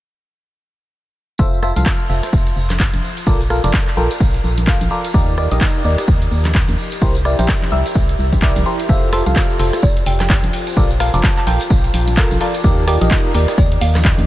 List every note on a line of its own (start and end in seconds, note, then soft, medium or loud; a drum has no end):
1.38 1.73 F1 medium
1.38 1.59 F4 medium
1.38 5.81 F4 medium
1.38 1.60 A4 medium
1.38 1.60 C5 medium
1.38 1.60 E5 loud
1.38 kick loud
1.38 tambourine medium
1.53 tambourine soft
1.58 3.86 C5 medium
1.63 1.73 F4 medium
1.63 1.73 A4 medium
1.63 1.73 C5 medium
1.63 1.73 E5 loud
1.63 cross-stick medium
1.63 tambourine medium
1.76 1.84 C2 medium
1.76 2.07 F4 medium
1.76 2.07 A4 medium
1.76 2.07 C5 medium
1.76 2.07 F5 loud
1.76 snare soft
1.76 closed hi-hat medium
1.76 tambourine medium
1.76 high conga medium
1.85 kick loud
1.85 snare loud
1.85 clap loud
1.85 tambourine medium
1.94 5.14 A5 medium
1.99 tambourine soft
2.08 2.21 F1 medium
2.08 2.30 F4 medium
2.08 2.30 A4 medium
2.08 2.30 C5 medium
2.08 4.02 E5 medium
2.08 2.30 E5 medium
2.08 tambourine medium
2.23 cross-stick medium
2.23 snare soft
2.23 closed hi-hat medium
2.23 tambourine medium
2.33 2.53 F1 medium
2.33 kick loud
2.33 tambourine medium
2.46 closed hi-hat soft
2.46 tambourine soft
2.56 2.90 F1 medium
2.56 tambourine medium
2.70 cross-stick medium
2.70 clap soft
2.70 closed hi-hat medium
2.70 tambourine medium
2.70 high conga medium
2.80 kick loud
2.80 snare loud
2.80 clap loud
2.80 tambourine medium
2.94 3.02 F1 medium
2.94 closed hi-hat soft
2.94 tambourine soft
2.94 high conga medium
3.04 tambourine medium
3.17 closed hi-hat medium
3.17 tambourine medium
3.27 3.60 A#1 medium
3.27 3.41 F4 medium
3.27 3.41 A4 medium
3.27 3.41 A#4 medium
3.27 3.41 D5 loud
3.27 kick loud
3.27 tambourine medium
3.40 closed hi-hat soft
3.40 tambourine soft
3.50 3.62 F4 medium
3.50 3.62 A4 medium
3.50 3.62 A#4 medium
3.50 3.62 F5 medium
3.50 cross-stick medium
3.50 tambourine medium
3.58 5.80 A#4 medium
3.64 3.72 F1 medium
3.64 3.74 F4 medium
3.64 3.74 A4 medium
3.64 3.74 A#4 medium
3.64 3.74 D5 loud
3.64 snare soft
3.64 closed hi-hat medium
3.64 tambourine medium
3.64 high conga medium
3.74 kick loud
3.74 snare loud
3.74 clap loud
3.74 tambourine medium
3.87 clap soft
3.87 tambourine soft
3.97 4.08 A#1 loud
3.97 4.11 F4 medium
3.97 4.11 A4 medium
3.97 4.11 A#4 medium
3.97 4.11 G5 loud
3.97 tambourine medium
4.11 closed hi-hat soft
4.11 closed hi-hat medium
4.11 tambourine medium
4.20 4.41 A#1 medium
4.20 kick loud
4.20 tambourine medium
4.34 closed hi-hat medium
4.34 tambourine soft
4.44 4.78 A#1 medium
4.44 tambourine medium
4.57 closed hi-hat medium
4.57 tambourine medium
4.57 high conga medium
4.67 4.88 F4 medium
4.67 4.88 A4 medium
4.67 4.88 A#4 medium
4.67 4.88 F5 loud
4.67 kick loud
4.67 snare loud
4.67 clap loud
4.67 tambourine medium
4.81 4.89 A#1 medium
4.81 closed hi-hat soft
4.81 tambourine soft
4.81 high conga medium
4.90 5.11 F4 medium
4.90 5.11 A4 medium
4.90 5.11 A#4 medium
4.90 5.11 D5 medium
4.90 tambourine medium
5.04 closed hi-hat medium
5.04 tambourine medium
5.14 5.48 D#2 medium
5.14 5.35 D#4 medium
5.14 5.35 G4 medium
5.14 9.65 G4 medium
5.14 5.35 A#4 medium
5.14 5.34 D5 loud
5.14 kick loud
5.14 tambourine medium
5.28 tambourine soft
5.37 5.48 D#4 loud
5.37 5.48 G4 medium
5.37 5.48 A#4 medium
5.37 5.48 D5 loud
5.37 cross-stick medium
5.37 tambourine medium
5.42 6.78 D#5 medium
5.42 8.89 A#5 medium
5.51 5.59 A#1 medium
5.51 5.82 D#4 medium
5.51 5.82 G4 medium
5.51 5.82 A#4 medium
5.51 5.82 D#5 medium
5.51 snare soft
5.51 closed hi-hat medium
5.51 tambourine medium
5.51 high conga medium
5.61 kick loud
5.61 snare loud
5.61 clap loud
5.61 tambourine medium
5.75 tambourine soft
5.84 5.96 D#2 medium
5.84 6.05 D#4 medium
5.84 6.05 G4 medium
5.84 6.05 A#4 medium
5.84 6.05 D5 medium
5.84 tambourine medium
5.97 cross-stick medium
5.97 snare soft
5.97 closed hi-hat medium
5.97 tambourine medium
6.07 6.28 D#2 medium
6.07 kick loud
6.07 tambourine medium
6.21 closed hi-hat medium
6.21 tambourine soft
6.31 6.65 D#2 medium
6.31 tambourine medium
6.45 cross-stick medium
6.45 clap soft
6.45 closed hi-hat medium
6.45 tambourine medium
6.45 high conga medium
6.53 kick loud
6.53 snare loud
6.53 clap loud
6.53 tambourine medium
6.55 tambourine medium
6.68 6.77 D#2 medium
6.68 closed hi-hat soft
6.68 tambourine soft
6.68 high conga medium
6.78 tambourine medium
6.91 11.53 C5 medium
6.91 closed hi-hat medium
6.91 tambourine medium
7.01 7.35 C2 loud
7.01 7.16 E4 medium
7.01 7.16 G4 medium
7.01 7.16 A#4 medium
7.01 7.16 C5 loud
7.01 kick loud
7.01 tambourine medium
7.06 11.52 G5 medium
7.15 closed hi-hat soft
7.15 tambourine soft
7.25 7.37 E4 medium
7.25 7.37 G4 medium
7.25 7.37 A#4 medium
7.25 7.37 D5 medium
7.25 cross-stick medium
7.25 tambourine medium
7.39 7.47 A#1 medium
7.39 7.49 E4 medium
7.39 7.49 G4 medium
7.39 7.49 A#4 medium
7.39 7.49 C5 loud
7.39 snare soft
7.39 closed hi-hat medium
7.39 tambourine medium
7.39 high conga medium
7.48 kick loud
7.48 snare loud
7.48 clap loud
7.48 tambourine medium
7.62 clap soft
7.62 closed hi-hat soft
7.62 tambourine soft
7.62 high conga medium
7.71 7.83 C2 medium
7.71 7.86 E4 loud
7.71 7.86 G4 medium
7.71 7.86 A#4 medium
7.71 7.86 E5 loud
7.71 tambourine medium
7.86 closed hi-hat medium
7.86 closed hi-hat soft
7.86 tambourine medium
7.95 8.16 C2 medium
7.95 kick loud
7.95 tambourine medium
8.09 closed hi-hat soft
8.09 tambourine soft
8.19 8.52 C2 medium
8.19 tambourine medium
8.32 kick medium
8.32 closed hi-hat medium
8.32 tambourine medium
8.32 high conga medium
8.42 8.63 E4 medium
8.42 8.63 G4 medium
8.42 8.63 A#4 medium
8.42 8.63 D5 medium
8.42 kick loud
8.42 snare loud
8.42 clap loud
8.42 tambourine medium
8.56 8.64 C2 medium
8.56 closed hi-hat soft
8.56 tambourine soft
8.56 high conga medium
8.65 8.86 E4 medium
8.65 8.86 G4 medium
8.65 8.86 A#4 medium
8.65 8.86 C5 loud
8.65 tambourine medium
8.79 closed hi-hat medium
8.79 tambourine medium
8.89 9.23 F1 loud
8.89 9.10 F4 medium
8.89 13.29 F4 medium
8.89 9.10 A4 medium
8.89 9.10 C5 medium
8.89 9.10 E5 loud
8.89 kick loud
8.89 tambourine medium
9.03 tambourine soft
9.13 9.23 F4 medium
9.13 9.23 A4 medium
9.13 9.23 C5 medium
9.13 9.23 E5 loud
9.13 cross-stick medium
9.13 open hi-hat loud
9.13 tambourine medium
9.26 9.34 C2 loud
9.26 9.57 F4 medium
9.26 9.57 A4 medium
9.26 9.57 C5 medium
9.26 9.57 F5 medium
9.26 snare soft
9.26 closed hi-hat medium
9.26 tambourine medium
9.26 high conga medium
9.36 kick loud
9.36 snare loud
9.36 clap loud
9.36 tambourine medium
9.50 13.31 A5 medium
9.50 tambourine soft
9.59 9.71 F1 medium
9.59 9.80 F4 medium
9.59 9.80 A4 medium
9.59 9.80 C5 medium
9.59 9.80 E5 medium
9.59 open hi-hat loud
9.59 tambourine medium
9.73 cross-stick medium
9.73 snare soft
9.73 closed hi-hat medium
9.73 tambourine medium
9.82 10.03 F1 medium
9.82 10.00 D5 medium
9.82 kick loud
9.82 tambourine medium
9.97 closed hi-hat soft
9.97 tambourine soft
10.06 10.40 F1 medium
10.06 10.15 G5 medium
10.06 open hi-hat loud
10.06 tambourine medium
10.20 10.26 G5 medium
10.20 cross-stick medium
10.20 clap soft
10.20 closed hi-hat medium
10.20 tambourine medium
10.20 high conga medium
10.30 kick loud
10.30 snare loud
10.30 clap loud
10.30 tambourine medium
10.43 10.52 F1 medium
10.43 closed hi-hat soft
10.43 tambourine soft
10.43 high conga medium
10.53 open hi-hat loud
10.53 tambourine medium
10.67 closed hi-hat medium
10.67 tambourine medium
10.77 11.10 A#1 loud
10.77 10.91 F4 medium
10.77 10.91 A4 medium
10.77 10.91 A#4 medium
10.77 10.91 D5 loud
10.77 kick loud
10.77 tambourine medium
10.90 closed hi-hat soft
10.90 tambourine soft
10.99 11.12 F4 medium
10.99 11.12 A4 medium
10.99 14.27 A#4 medium
10.99 11.12 A#4 medium
10.99 11.12 F5 medium
10.99 cross-stick medium
10.99 open hi-hat loud
10.99 tambourine medium
11.14 11.22 F1 loud
11.14 11.24 F4 medium
11.14 11.24 A4 medium
11.14 11.24 A#4 medium
11.14 11.24 D5 loud
11.14 14.27 D6 medium
11.14 snare soft
11.14 closed hi-hat medium
11.14 tambourine medium
11.14 high conga medium
11.23 11.32 A5 medium
11.23 kick loud
11.23 snare loud
11.23 clap loud
11.23 tambourine medium
11.37 11.44 A5 medium
11.37 clap soft
11.37 tambourine soft
11.47 11.58 A#1 medium
11.47 11.61 F4 medium
11.47 11.61 A4 medium
11.47 11.61 A#4 medium
11.47 11.61 G5 loud
11.47 open hi-hat loud
11.47 tambourine medium
11.60 closed hi-hat medium
11.60 closed hi-hat soft
11.60 tambourine medium
11.70 11.91 A#1 medium
11.70 kick loud
11.70 tambourine medium
11.84 closed hi-hat soft
11.84 tambourine soft
11.93 12.27 A#1 medium
11.93 open hi-hat loud
11.93 tambourine medium
12.07 closed hi-hat medium
12.07 tambourine medium
12.07 high conga medium
12.17 12.38 F4 medium
12.17 12.38 A4 medium
12.17 12.38 A#4 medium
12.17 12.38 F5 loud
12.17 kick loud
12.17 snare loud
12.17 clap loud
12.17 tambourine medium
12.30 12.39 A#1 medium
12.30 closed hi-hat soft
12.30 tambourine soft
12.30 high conga medium
12.41 12.61 F4 medium
12.41 12.61 A4 medium
12.41 12.61 A#4 medium
12.41 12.61 D5 loud
12.41 open hi-hat loud
12.41 tambourine medium
12.55 closed hi-hat medium
12.55 tambourine medium
12.64 12.98 D#2 loud
12.64 14.27 D#4 medium
12.64 12.85 D#4 loud
12.64 12.85 G4 medium
12.64 12.85 A#4 medium
12.64 12.85 D5 loud
12.64 kick loud
12.64 tambourine medium
12.78 tambourine soft
12.88 12.98 D#4 loud
12.88 12.98 G4 medium
12.88 12.98 A#4 medium
12.88 12.98 D5 loud
12.88 cross-stick medium
12.88 open hi-hat loud
12.88 tambourine medium
13.01 13.09 A#1 loud
13.01 13.32 D#4 medium
13.01 13.32 G4 medium
13.01 13.32 A#4 medium
13.01 13.32 D#5 loud
13.01 snare soft
13.01 closed hi-hat medium
13.01 tambourine medium
13.01 high conga medium
13.10 kick loud
13.10 snare loud
13.10 clap loud
13.10 tambourine medium
13.10 tambourine loud
13.17 14.27 G5 medium
13.25 tambourine soft
13.34 13.46 D#2 medium
13.34 13.55 D#4 medium
13.34 13.55 G4 medium
13.34 13.55 A#4 medium
13.34 13.55 D5 medium
13.34 open hi-hat loud
13.34 tambourine medium
13.48 cross-stick medium
13.48 snare medium
13.48 closed hi-hat medium
13.48 tambourine medium
13.58 13.78 D#2 medium
13.58 13.75 D5 medium
13.58 kick loud
13.58 tambourine medium
13.72 closed hi-hat medium
13.72 tambourine soft
13.81 14.15 D#2 medium
13.81 13.98 F5 medium
13.81 open hi-hat loud
13.81 tambourine medium
13.95 cross-stick medium
13.95 clap soft
13.95 closed hi-hat medium
13.95 tambourine medium
13.95 high conga medium
14.04 kick loud
14.04 snare loud
14.04 clap loud
14.04 tambourine medium
14.18 14.27 D#2 medium
14.18 closed hi-hat medium
14.18 tambourine soft
14.18 high conga medium